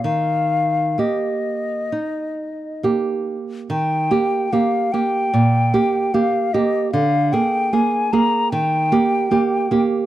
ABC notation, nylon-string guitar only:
X:1
M:4/4
L:1/8
Q:1/4=74
K:Eb
V:1 name="Nylon-string guitar"
E,2 [B,G]2 E2 [B,G]2 | E, [B,G] [B,G] [B,G] B,, [B,G] [B,G] [B,G] | D, [B,A] [B,A] [B,A] E, [B,G] [B,G] [B,G] |]